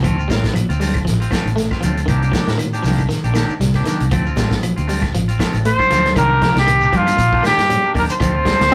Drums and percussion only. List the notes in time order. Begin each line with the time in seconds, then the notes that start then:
0.04 kick, closed hi-hat, claves, shekere
0.19 shekere
0.30 kick, snare, closed hi-hat, high conga, shekere
0.44 kick, snare, closed hi-hat, low conga, shekere
0.55 closed hi-hat, high conga, claves, shekere
0.70 closed hi-hat, shekere
0.81 open hi-hat, low conga, shekere
0.94 kick, closed hi-hat, claves, shekere
1.07 snare, closed hi-hat, shekere
1.22 closed hi-hat, shekere
1.31 kick, snare, closed hi-hat, high conga, claves, shekere
1.47 closed hi-hat, shekere
1.57 snare, closed hi-hat, shekere
1.71 kick, snare, high conga, claves, shekere
1.82 closed hi-hat, high conga, low conga, shekere
1.97 closed hi-hat, shekere
2.08 kick, closed hi-hat, claves, shekere
2.22 closed hi-hat, shekere
2.33 kick, snare, closed hi-hat, high conga, shekere
2.47 snare, closed hi-hat, high conga, shekere
2.58 closed hi-hat, high conga, claves, shekere
2.73 closed hi-hat, shekere
2.84 snare, open hi-hat, low conga, shekere
2.98 kick, closed hi-hat, claves, shekere
3.09 snare, closed hi-hat, shekere
3.24 closed hi-hat, shekere
3.35 snare, closed hi-hat, high conga, claves, shekere
3.49 shekere
3.61 snare, closed hi-hat, shekere
3.73 kick, snare, closed hi-hat, high conga, claves, shekere
3.85 snare, closed hi-hat, low conga, shekere
4.00 closed hi-hat, shekere
4.11 kick, closed hi-hat, claves, shekere
4.26 shekere
4.36 kick, snare, closed hi-hat, high conga, shekere
4.51 kick, snare, closed hi-hat, low conga, shekere
4.62 closed hi-hat, high conga, claves, shekere
4.77 closed hi-hat, shekere
4.88 open hi-hat, low conga, shekere
5.02 kick, snare, closed hi-hat, claves, shekere
5.14 closed hi-hat, shekere
5.28 closed hi-hat, shekere
5.39 kick, snare, closed hi-hat, high conga, claves, shekere
5.53 closed hi-hat, high conga, shekere
5.65 closed hi-hat, shekere
5.79 kick, low conga, claves, shekere
5.90 snare, closed hi-hat, low conga, shekere
6.05 snare, closed hi-hat, low conga, shekere
6.15 kick, closed hi-hat, high conga, claves, shekere
6.42 kick, snare, closed hi-hat, high conga
6.56 snare, closed hi-hat, shekere
6.67 closed hi-hat, high conga, claves, shekere
6.81 shekere
6.93 kick, closed hi-hat, low conga, shekere
7.07 closed hi-hat, high conga, claves, shekere
7.18 kick, closed hi-hat, high conga, shekere
7.33 kick
7.43 snare, closed hi-hat, high conga, claves, shekere
7.58 snare, closed hi-hat, shekere
7.69 closed hi-hat, high conga, low conga, shekere
7.82 claves
7.94 kick, open hi-hat, high conga, low conga, shekere
8.09 closed hi-hat, shekere
8.20 kick, closed hi-hat, high conga, claves, shekere
8.45 kick, snare, closed hi-hat, high conga, low conga
8.61 snare, closed hi-hat, shekere
8.70 claves